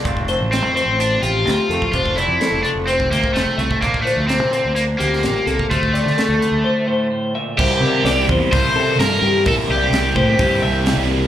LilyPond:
<<
  \new Staff \with { instrumentName = "Clean electric guitar" } { \time 4/4 \key c \mixolydian \tempo 4 = 128 f''8 c''4 c''4 g'4 a'8 | c''8 d''8 a'4 c''8 c''4 e''8 | f''8 c''4 c''4 g'4 a'8 | c''8 d''8 a'4 c''8 c''4 e''8 |
c''8 bes'8 d''8 c''4 a'4 g'8 | bes'8 d''4 c''4 e''8 d''4 | }
  \new Staff \with { instrumentName = "Overdriven electric guitar" } { \time 4/4 \key c \mixolydian r4 c'8 c'8 d'8 f'4. | f'8 e'4 d'8 c'8 bes8 a4 | bes8 a8 c'4 bes8 bes4. | a2. r4 |
g'4. r8 c''4 bes'4 | a'8 g'2. r8 | }
  \new Staff \with { instrumentName = "Clean electric guitar" } { \time 4/4 \key c \mixolydian << { <f a c' d'>8 c'8 a2 c'8 a8 | d'8 c'8 a2 c'8 a8 | <d bes d'>8 d'8 bes2. | f'8 c'8 a2. |
r1 | r1 | } \\ { f,4. f4 c4. | f,4. f4 c4. | bes,4. d4 f,8 bes,8 c8 | d,4. d4 a,8 a,8 bes,8 |
r1 | r1 | } >> }
  \new Staff \with { instrumentName = "Overdriven electric guitar" } { \clef bass \time 4/4 \key c \mixolydian r1 | r1 | r1 | r1 |
<c g bes e'>2 <c g bes e'>2 | <c g bes e'>2 <c g bes e'>2 | }
  \new Staff \with { instrumentName = "Fingered electric bass" } { \clef bass \time 4/4 \key c \mixolydian f,,8. a,,8 f,8 a,,8. a,,8 d,16 r16 f,16 r16 | f,,8. f,16 r16 f,,16 r16 f,,8. d,16 r16 f,,16 r16 c,16 r16 | bes,,8. d,8 bes,8 d,8. d,8 a,,16 r16 c,16 r16 | d,8. d16 r16 d,16 r16 d,16 r2 |
c,8 c8 c,8 e,16 r16 c,16 r16 c8 g,8 g,8 | bes,,8 c,8 c,8 a,8 g,8 c,8. c,8. | }
  \new DrumStaff \with { instrumentName = "Drums" } \drummode { \time 4/4 <hh bd>16 bd16 hh8 <hh sn>8 hh8 hh8 hh8 <hh sn>8 hh16 bd16 | <hh bd>16 bd16 hh8 <hh sn>8 hh8 hh16 bd16 <hh sn>16 bd16 <hh sn>8 hh16 bd16 | <hh bd>16 bd16 hh8 <hh sn>8 hh8 hh8 hh16 sn16 <hh sn>8 hh16 bd16 | <hh bd>16 bd16 hh16 sn16 <hh sn>8 hh8 r4 r4 |
<cymc bd>4 <hho sn>8 bd8 <hho bd>4 <hho sn>4 | <hho bd>4 <hho sn>8 bd8 <hho bd>4 <hho sn>4 | }
>>